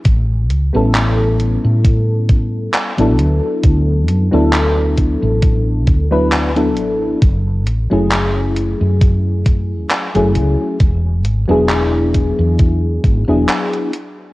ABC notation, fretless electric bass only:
X:1
M:4/4
L:1/16
Q:"Swing 16ths" 1/4=67
K:Emix
V:1 name="Fretless electric bass" clef=bass
A,,,2 C,, A,,,4 A,,4- A,, z A,,, D,, z | D,,2 F,, D,,4 A,,,3 D,,4 A,,,2 | F,,,2 A,,, F,,,4 F,,4- F,, z F,,, C,, z | E,,,2 G,,, E,,,4 E,,3 G,,, E,,, z4 |]